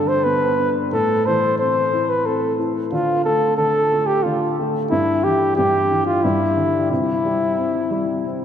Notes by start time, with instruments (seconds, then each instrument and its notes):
Already playing: felt piano G2 D3
0.08 flugelhorn C5
0.24 felt piano B3, flugelhorn B4
0.59 felt piano D4
0.92 felt piano A2, flugelhorn A4
1.26 felt piano E3, flugelhorn C5
1.58 felt piano C4, flugelhorn C5
1.93 felt piano E4
2.10 flugelhorn B4
2.26 felt piano C4, flugelhorn A4
2.59 felt piano E4
2.92 felt piano D3, flugelhorn F4
3.25 felt piano A3, flugelhorn A4
3.57 felt piano D3, flugelhorn A4
3.92 felt piano A3
4.07 flugelhorn G4
4.23 felt piano D3, flugelhorn F4
4.59 felt piano A3
4.91 felt piano G2, flugelhorn E4
5.24 felt piano E3, flugelhorn G4
5.56 felt piano G2, flugelhorn G4
5.91 felt piano E3
6.06 flugelhorn F4
6.24 felt piano G2, flugelhorn E4
6.57 felt piano D3
6.90 felt piano C3, flugelhorn E4
7.25 felt piano G3
7.57 felt piano C4
7.91 felt piano G3
8.24 felt piano C4